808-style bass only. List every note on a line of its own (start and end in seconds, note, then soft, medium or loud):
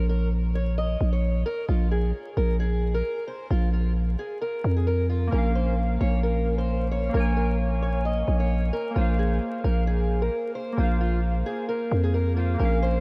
0.00 0.96 A#1 loud
1.01 1.44 A#1 loud
1.69 2.12 A#1 loud
2.37 3.02 A#1 loud
3.51 4.16 A#1 loud
4.64 5.30 F2 loud
5.32 5.98 A#1 loud
6.01 7.10 A#1 loud
7.14 8.24 A#1 loud
8.28 8.71 A#1 loud
8.96 9.40 A#1 loud
9.64 10.30 A#1 loud
10.78 11.43 A#1 loud
11.91 12.57 F2 loud
12.60 13.00 A#1 loud